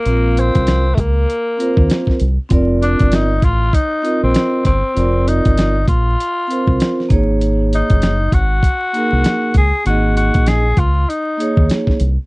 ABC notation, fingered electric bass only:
X:1
M:4/4
L:1/16
Q:"Swing 16ths" 1/4=98
K:Abmix
V:1 name="Fingered electric bass" clef=bass
B,,,3 C,,3 D,,2 z3 E,, z2 C,, z | F,,,3 =G,,,3 =A,,,2 z3 B,,, z2 G,,, z | F,,,3 =G,,,3 B,,,2 z3 C,, z2 A,,,2- | A,,,3 G,,,3 A,,,2 z3 C,, z2 D,, z |
A,,,3 B,,,3 D,,2 z3 E,, z2 C,, z |]